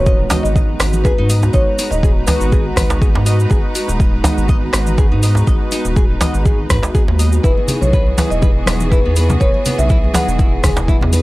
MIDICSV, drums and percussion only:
0, 0, Header, 1, 3, 480
1, 0, Start_track
1, 0, Key_signature, 5, "minor"
1, 0, Tempo, 491803
1, 1502, Time_signature, 4, 2, 24, 8
1, 10952, End_track
2, 0, Start_track
2, 0, Title_t, "Djembe"
2, 293, Note_on_c, 9, 62, 101
2, 300, Note_on_c, 9, 63, 88
2, 304, Note_on_c, 9, 64, 85
2, 390, Note_off_c, 9, 62, 0
2, 397, Note_off_c, 9, 63, 0
2, 401, Note_off_c, 9, 64, 0
2, 779, Note_on_c, 9, 62, 87
2, 876, Note_off_c, 9, 62, 0
2, 1025, Note_on_c, 9, 63, 90
2, 1123, Note_off_c, 9, 63, 0
2, 1395, Note_on_c, 9, 63, 88
2, 1493, Note_off_c, 9, 63, 0
2, 1861, Note_on_c, 9, 63, 63
2, 1958, Note_off_c, 9, 63, 0
2, 2222, Note_on_c, 9, 62, 95
2, 2226, Note_on_c, 9, 64, 87
2, 2227, Note_on_c, 9, 63, 95
2, 2319, Note_off_c, 9, 62, 0
2, 2323, Note_off_c, 9, 64, 0
2, 2324, Note_off_c, 9, 63, 0
2, 2696, Note_on_c, 9, 64, 83
2, 2793, Note_off_c, 9, 64, 0
2, 2831, Note_on_c, 9, 63, 105
2, 2833, Note_on_c, 9, 62, 103
2, 2929, Note_off_c, 9, 63, 0
2, 2931, Note_off_c, 9, 62, 0
2, 3079, Note_on_c, 9, 62, 82
2, 3177, Note_off_c, 9, 62, 0
2, 3414, Note_on_c, 9, 63, 70
2, 3512, Note_off_c, 9, 63, 0
2, 3787, Note_on_c, 9, 63, 63
2, 3884, Note_off_c, 9, 63, 0
2, 4137, Note_on_c, 9, 63, 99
2, 4137, Note_on_c, 9, 64, 93
2, 4138, Note_on_c, 9, 62, 101
2, 4234, Note_off_c, 9, 63, 0
2, 4235, Note_off_c, 9, 64, 0
2, 4236, Note_off_c, 9, 62, 0
2, 4614, Note_on_c, 9, 62, 91
2, 4712, Note_off_c, 9, 62, 0
2, 4860, Note_on_c, 9, 63, 97
2, 4957, Note_off_c, 9, 63, 0
2, 5221, Note_on_c, 9, 63, 87
2, 5318, Note_off_c, 9, 63, 0
2, 5711, Note_on_c, 9, 63, 58
2, 5808, Note_off_c, 9, 63, 0
2, 6058, Note_on_c, 9, 62, 112
2, 6059, Note_on_c, 9, 63, 80
2, 6062, Note_on_c, 9, 64, 75
2, 6156, Note_off_c, 9, 62, 0
2, 6157, Note_off_c, 9, 63, 0
2, 6160, Note_off_c, 9, 64, 0
2, 6541, Note_on_c, 9, 64, 91
2, 6639, Note_off_c, 9, 64, 0
2, 6663, Note_on_c, 9, 63, 95
2, 6667, Note_on_c, 9, 62, 105
2, 6760, Note_off_c, 9, 63, 0
2, 6765, Note_off_c, 9, 62, 0
2, 6913, Note_on_c, 9, 62, 73
2, 7010, Note_off_c, 9, 62, 0
2, 7271, Note_on_c, 9, 63, 58
2, 7369, Note_off_c, 9, 63, 0
2, 7633, Note_on_c, 9, 63, 55
2, 7730, Note_off_c, 9, 63, 0
2, 7981, Note_on_c, 9, 64, 82
2, 7982, Note_on_c, 9, 63, 83
2, 7988, Note_on_c, 9, 62, 91
2, 8079, Note_off_c, 9, 64, 0
2, 8080, Note_off_c, 9, 63, 0
2, 8086, Note_off_c, 9, 62, 0
2, 8466, Note_on_c, 9, 62, 80
2, 8563, Note_off_c, 9, 62, 0
2, 8701, Note_on_c, 9, 63, 88
2, 8799, Note_off_c, 9, 63, 0
2, 9074, Note_on_c, 9, 63, 90
2, 9172, Note_off_c, 9, 63, 0
2, 9555, Note_on_c, 9, 63, 52
2, 9652, Note_off_c, 9, 63, 0
2, 9894, Note_on_c, 9, 63, 86
2, 9900, Note_on_c, 9, 64, 80
2, 9901, Note_on_c, 9, 62, 99
2, 9992, Note_off_c, 9, 63, 0
2, 9997, Note_off_c, 9, 64, 0
2, 9999, Note_off_c, 9, 62, 0
2, 10384, Note_on_c, 9, 64, 84
2, 10481, Note_off_c, 9, 64, 0
2, 10505, Note_on_c, 9, 63, 87
2, 10509, Note_on_c, 9, 62, 108
2, 10603, Note_off_c, 9, 63, 0
2, 10606, Note_off_c, 9, 62, 0
2, 10761, Note_on_c, 9, 62, 76
2, 10858, Note_off_c, 9, 62, 0
2, 10952, End_track
3, 0, Start_track
3, 0, Title_t, "Drums"
3, 59, Note_on_c, 9, 69, 38
3, 63, Note_on_c, 9, 36, 120
3, 157, Note_off_c, 9, 69, 0
3, 160, Note_off_c, 9, 36, 0
3, 293, Note_on_c, 9, 69, 95
3, 303, Note_on_c, 9, 46, 92
3, 303, Note_on_c, 9, 47, 91
3, 390, Note_off_c, 9, 69, 0
3, 400, Note_off_c, 9, 46, 0
3, 400, Note_off_c, 9, 47, 0
3, 439, Note_on_c, 9, 69, 49
3, 537, Note_off_c, 9, 69, 0
3, 543, Note_on_c, 9, 36, 117
3, 546, Note_on_c, 9, 69, 36
3, 640, Note_off_c, 9, 36, 0
3, 643, Note_off_c, 9, 69, 0
3, 779, Note_on_c, 9, 69, 84
3, 782, Note_on_c, 9, 37, 93
3, 782, Note_on_c, 9, 46, 97
3, 876, Note_off_c, 9, 69, 0
3, 880, Note_off_c, 9, 37, 0
3, 880, Note_off_c, 9, 46, 0
3, 909, Note_on_c, 9, 69, 55
3, 914, Note_on_c, 9, 47, 85
3, 1006, Note_off_c, 9, 69, 0
3, 1012, Note_off_c, 9, 47, 0
3, 1023, Note_on_c, 9, 36, 118
3, 1024, Note_on_c, 9, 69, 37
3, 1121, Note_off_c, 9, 36, 0
3, 1122, Note_off_c, 9, 69, 0
3, 1264, Note_on_c, 9, 69, 89
3, 1266, Note_on_c, 9, 46, 89
3, 1361, Note_off_c, 9, 69, 0
3, 1363, Note_off_c, 9, 46, 0
3, 1390, Note_on_c, 9, 69, 51
3, 1487, Note_off_c, 9, 69, 0
3, 1496, Note_on_c, 9, 69, 42
3, 1503, Note_on_c, 9, 36, 127
3, 1593, Note_off_c, 9, 69, 0
3, 1601, Note_off_c, 9, 36, 0
3, 1742, Note_on_c, 9, 69, 97
3, 1746, Note_on_c, 9, 46, 91
3, 1840, Note_off_c, 9, 69, 0
3, 1843, Note_off_c, 9, 46, 0
3, 1873, Note_on_c, 9, 69, 55
3, 1971, Note_off_c, 9, 69, 0
3, 1984, Note_on_c, 9, 36, 126
3, 1991, Note_on_c, 9, 69, 40
3, 2081, Note_off_c, 9, 36, 0
3, 2089, Note_off_c, 9, 69, 0
3, 2217, Note_on_c, 9, 69, 97
3, 2225, Note_on_c, 9, 46, 96
3, 2225, Note_on_c, 9, 47, 90
3, 2315, Note_off_c, 9, 69, 0
3, 2322, Note_off_c, 9, 46, 0
3, 2322, Note_off_c, 9, 47, 0
3, 2351, Note_on_c, 9, 69, 55
3, 2449, Note_off_c, 9, 69, 0
3, 2462, Note_on_c, 9, 69, 39
3, 2464, Note_on_c, 9, 36, 122
3, 2560, Note_off_c, 9, 69, 0
3, 2562, Note_off_c, 9, 36, 0
3, 2704, Note_on_c, 9, 36, 62
3, 2704, Note_on_c, 9, 37, 94
3, 2704, Note_on_c, 9, 46, 96
3, 2704, Note_on_c, 9, 47, 97
3, 2704, Note_on_c, 9, 69, 89
3, 2802, Note_off_c, 9, 36, 0
3, 2802, Note_off_c, 9, 37, 0
3, 2802, Note_off_c, 9, 46, 0
3, 2802, Note_off_c, 9, 47, 0
3, 2802, Note_off_c, 9, 69, 0
3, 2832, Note_on_c, 9, 69, 50
3, 2929, Note_off_c, 9, 69, 0
3, 2944, Note_on_c, 9, 36, 127
3, 2948, Note_on_c, 9, 69, 37
3, 3042, Note_off_c, 9, 36, 0
3, 3046, Note_off_c, 9, 69, 0
3, 3183, Note_on_c, 9, 69, 88
3, 3184, Note_on_c, 9, 46, 90
3, 3281, Note_off_c, 9, 69, 0
3, 3282, Note_off_c, 9, 46, 0
3, 3315, Note_on_c, 9, 69, 55
3, 3413, Note_off_c, 9, 69, 0
3, 3422, Note_on_c, 9, 69, 41
3, 3423, Note_on_c, 9, 36, 127
3, 3520, Note_off_c, 9, 69, 0
3, 3521, Note_off_c, 9, 36, 0
3, 3661, Note_on_c, 9, 69, 106
3, 3663, Note_on_c, 9, 46, 93
3, 3758, Note_off_c, 9, 69, 0
3, 3760, Note_off_c, 9, 46, 0
3, 3795, Note_on_c, 9, 69, 63
3, 3893, Note_off_c, 9, 69, 0
3, 3903, Note_on_c, 9, 36, 126
3, 3904, Note_on_c, 9, 69, 40
3, 4000, Note_off_c, 9, 36, 0
3, 4002, Note_off_c, 9, 69, 0
3, 4143, Note_on_c, 9, 46, 89
3, 4143, Note_on_c, 9, 47, 87
3, 4147, Note_on_c, 9, 69, 107
3, 4240, Note_off_c, 9, 46, 0
3, 4240, Note_off_c, 9, 47, 0
3, 4245, Note_off_c, 9, 69, 0
3, 4274, Note_on_c, 9, 69, 55
3, 4372, Note_off_c, 9, 69, 0
3, 4379, Note_on_c, 9, 69, 41
3, 4383, Note_on_c, 9, 36, 124
3, 4477, Note_off_c, 9, 69, 0
3, 4481, Note_off_c, 9, 36, 0
3, 4620, Note_on_c, 9, 37, 102
3, 4620, Note_on_c, 9, 46, 98
3, 4624, Note_on_c, 9, 69, 92
3, 4718, Note_off_c, 9, 37, 0
3, 4718, Note_off_c, 9, 46, 0
3, 4722, Note_off_c, 9, 69, 0
3, 4749, Note_on_c, 9, 69, 52
3, 4752, Note_on_c, 9, 47, 80
3, 4847, Note_off_c, 9, 69, 0
3, 4850, Note_off_c, 9, 47, 0
3, 4860, Note_on_c, 9, 69, 42
3, 4862, Note_on_c, 9, 36, 127
3, 4958, Note_off_c, 9, 69, 0
3, 4960, Note_off_c, 9, 36, 0
3, 5100, Note_on_c, 9, 69, 94
3, 5103, Note_on_c, 9, 46, 91
3, 5198, Note_off_c, 9, 69, 0
3, 5200, Note_off_c, 9, 46, 0
3, 5238, Note_on_c, 9, 69, 54
3, 5336, Note_off_c, 9, 69, 0
3, 5340, Note_on_c, 9, 69, 42
3, 5341, Note_on_c, 9, 36, 124
3, 5438, Note_off_c, 9, 69, 0
3, 5439, Note_off_c, 9, 36, 0
3, 5576, Note_on_c, 9, 69, 95
3, 5582, Note_on_c, 9, 46, 91
3, 5673, Note_off_c, 9, 69, 0
3, 5679, Note_off_c, 9, 46, 0
3, 5709, Note_on_c, 9, 69, 53
3, 5807, Note_off_c, 9, 69, 0
3, 5820, Note_on_c, 9, 69, 42
3, 5821, Note_on_c, 9, 36, 127
3, 5918, Note_off_c, 9, 36, 0
3, 5918, Note_off_c, 9, 69, 0
3, 6061, Note_on_c, 9, 69, 91
3, 6062, Note_on_c, 9, 46, 86
3, 6062, Note_on_c, 9, 47, 87
3, 6159, Note_off_c, 9, 69, 0
3, 6160, Note_off_c, 9, 46, 0
3, 6160, Note_off_c, 9, 47, 0
3, 6190, Note_on_c, 9, 69, 54
3, 6288, Note_off_c, 9, 69, 0
3, 6300, Note_on_c, 9, 36, 119
3, 6300, Note_on_c, 9, 69, 38
3, 6397, Note_off_c, 9, 69, 0
3, 6398, Note_off_c, 9, 36, 0
3, 6539, Note_on_c, 9, 69, 95
3, 6540, Note_on_c, 9, 36, 62
3, 6540, Note_on_c, 9, 37, 97
3, 6540, Note_on_c, 9, 46, 91
3, 6540, Note_on_c, 9, 47, 91
3, 6636, Note_off_c, 9, 69, 0
3, 6638, Note_off_c, 9, 36, 0
3, 6638, Note_off_c, 9, 37, 0
3, 6638, Note_off_c, 9, 46, 0
3, 6638, Note_off_c, 9, 47, 0
3, 6671, Note_on_c, 9, 69, 58
3, 6769, Note_off_c, 9, 69, 0
3, 6780, Note_on_c, 9, 69, 37
3, 6781, Note_on_c, 9, 36, 120
3, 6877, Note_off_c, 9, 69, 0
3, 6878, Note_off_c, 9, 36, 0
3, 7020, Note_on_c, 9, 46, 86
3, 7020, Note_on_c, 9, 69, 98
3, 7118, Note_off_c, 9, 46, 0
3, 7118, Note_off_c, 9, 69, 0
3, 7148, Note_on_c, 9, 69, 58
3, 7246, Note_off_c, 9, 69, 0
3, 7262, Note_on_c, 9, 36, 121
3, 7265, Note_on_c, 9, 69, 42
3, 7359, Note_off_c, 9, 36, 0
3, 7363, Note_off_c, 9, 69, 0
3, 7393, Note_on_c, 9, 62, 47
3, 7491, Note_off_c, 9, 62, 0
3, 7495, Note_on_c, 9, 64, 104
3, 7497, Note_on_c, 9, 69, 97
3, 7500, Note_on_c, 9, 46, 86
3, 7593, Note_off_c, 9, 64, 0
3, 7594, Note_off_c, 9, 69, 0
3, 7598, Note_off_c, 9, 46, 0
3, 7630, Note_on_c, 9, 64, 94
3, 7631, Note_on_c, 9, 63, 64
3, 7635, Note_on_c, 9, 69, 52
3, 7728, Note_off_c, 9, 64, 0
3, 7729, Note_off_c, 9, 63, 0
3, 7733, Note_off_c, 9, 69, 0
3, 7741, Note_on_c, 9, 69, 35
3, 7743, Note_on_c, 9, 36, 119
3, 7839, Note_off_c, 9, 69, 0
3, 7840, Note_off_c, 9, 36, 0
3, 7870, Note_on_c, 9, 62, 36
3, 7968, Note_off_c, 9, 62, 0
3, 7981, Note_on_c, 9, 63, 93
3, 7982, Note_on_c, 9, 69, 93
3, 7983, Note_on_c, 9, 46, 88
3, 7983, Note_on_c, 9, 47, 87
3, 8079, Note_off_c, 9, 63, 0
3, 8080, Note_off_c, 9, 69, 0
3, 8081, Note_off_c, 9, 46, 0
3, 8081, Note_off_c, 9, 47, 0
3, 8115, Note_on_c, 9, 69, 51
3, 8213, Note_off_c, 9, 69, 0
3, 8219, Note_on_c, 9, 62, 46
3, 8219, Note_on_c, 9, 63, 104
3, 8221, Note_on_c, 9, 69, 41
3, 8223, Note_on_c, 9, 36, 123
3, 8316, Note_off_c, 9, 63, 0
3, 8317, Note_off_c, 9, 62, 0
3, 8318, Note_off_c, 9, 69, 0
3, 8320, Note_off_c, 9, 36, 0
3, 8454, Note_on_c, 9, 63, 106
3, 8465, Note_on_c, 9, 37, 99
3, 8465, Note_on_c, 9, 46, 89
3, 8466, Note_on_c, 9, 69, 87
3, 8551, Note_off_c, 9, 63, 0
3, 8563, Note_off_c, 9, 37, 0
3, 8563, Note_off_c, 9, 46, 0
3, 8564, Note_off_c, 9, 69, 0
3, 8591, Note_on_c, 9, 69, 56
3, 8595, Note_on_c, 9, 47, 74
3, 8597, Note_on_c, 9, 62, 40
3, 8689, Note_off_c, 9, 69, 0
3, 8693, Note_off_c, 9, 47, 0
3, 8694, Note_off_c, 9, 62, 0
3, 8703, Note_on_c, 9, 36, 119
3, 8708, Note_on_c, 9, 69, 38
3, 8800, Note_off_c, 9, 36, 0
3, 8806, Note_off_c, 9, 69, 0
3, 8940, Note_on_c, 9, 69, 97
3, 8942, Note_on_c, 9, 62, 47
3, 8945, Note_on_c, 9, 46, 83
3, 9037, Note_off_c, 9, 69, 0
3, 9040, Note_off_c, 9, 62, 0
3, 9043, Note_off_c, 9, 46, 0
3, 9072, Note_on_c, 9, 69, 52
3, 9074, Note_on_c, 9, 63, 99
3, 9080, Note_on_c, 9, 64, 105
3, 9169, Note_off_c, 9, 69, 0
3, 9172, Note_off_c, 9, 63, 0
3, 9178, Note_off_c, 9, 64, 0
3, 9181, Note_on_c, 9, 69, 40
3, 9183, Note_on_c, 9, 36, 117
3, 9279, Note_off_c, 9, 69, 0
3, 9280, Note_off_c, 9, 36, 0
3, 9313, Note_on_c, 9, 62, 49
3, 9410, Note_off_c, 9, 62, 0
3, 9422, Note_on_c, 9, 69, 90
3, 9425, Note_on_c, 9, 46, 87
3, 9430, Note_on_c, 9, 64, 105
3, 9520, Note_off_c, 9, 69, 0
3, 9523, Note_off_c, 9, 46, 0
3, 9528, Note_off_c, 9, 64, 0
3, 9554, Note_on_c, 9, 69, 52
3, 9555, Note_on_c, 9, 64, 102
3, 9560, Note_on_c, 9, 63, 57
3, 9652, Note_off_c, 9, 64, 0
3, 9652, Note_off_c, 9, 69, 0
3, 9657, Note_off_c, 9, 63, 0
3, 9657, Note_on_c, 9, 69, 38
3, 9663, Note_on_c, 9, 36, 116
3, 9754, Note_off_c, 9, 69, 0
3, 9760, Note_off_c, 9, 36, 0
3, 9795, Note_on_c, 9, 63, 56
3, 9801, Note_on_c, 9, 62, 39
3, 9893, Note_off_c, 9, 63, 0
3, 9894, Note_on_c, 9, 63, 83
3, 9898, Note_off_c, 9, 62, 0
3, 9902, Note_on_c, 9, 69, 97
3, 9905, Note_on_c, 9, 46, 81
3, 9905, Note_on_c, 9, 47, 86
3, 9992, Note_off_c, 9, 63, 0
3, 9999, Note_off_c, 9, 69, 0
3, 10003, Note_off_c, 9, 46, 0
3, 10003, Note_off_c, 9, 47, 0
3, 10038, Note_on_c, 9, 69, 49
3, 10136, Note_off_c, 9, 69, 0
3, 10140, Note_on_c, 9, 69, 36
3, 10142, Note_on_c, 9, 36, 119
3, 10145, Note_on_c, 9, 62, 56
3, 10237, Note_off_c, 9, 69, 0
3, 10240, Note_off_c, 9, 36, 0
3, 10242, Note_off_c, 9, 62, 0
3, 10378, Note_on_c, 9, 64, 90
3, 10381, Note_on_c, 9, 36, 61
3, 10381, Note_on_c, 9, 69, 90
3, 10382, Note_on_c, 9, 37, 94
3, 10382, Note_on_c, 9, 46, 90
3, 10382, Note_on_c, 9, 47, 92
3, 10475, Note_off_c, 9, 64, 0
3, 10479, Note_off_c, 9, 36, 0
3, 10479, Note_off_c, 9, 37, 0
3, 10479, Note_off_c, 9, 46, 0
3, 10479, Note_off_c, 9, 47, 0
3, 10479, Note_off_c, 9, 69, 0
3, 10507, Note_on_c, 9, 69, 46
3, 10518, Note_on_c, 9, 62, 38
3, 10605, Note_off_c, 9, 69, 0
3, 10616, Note_off_c, 9, 62, 0
3, 10618, Note_on_c, 9, 63, 78
3, 10621, Note_on_c, 9, 36, 118
3, 10625, Note_on_c, 9, 69, 33
3, 10715, Note_off_c, 9, 63, 0
3, 10719, Note_off_c, 9, 36, 0
3, 10723, Note_off_c, 9, 69, 0
3, 10748, Note_on_c, 9, 64, 88
3, 10846, Note_off_c, 9, 64, 0
3, 10858, Note_on_c, 9, 62, 57
3, 10860, Note_on_c, 9, 69, 79
3, 10861, Note_on_c, 9, 46, 83
3, 10952, Note_off_c, 9, 46, 0
3, 10952, Note_off_c, 9, 62, 0
3, 10952, Note_off_c, 9, 69, 0
3, 10952, End_track
0, 0, End_of_file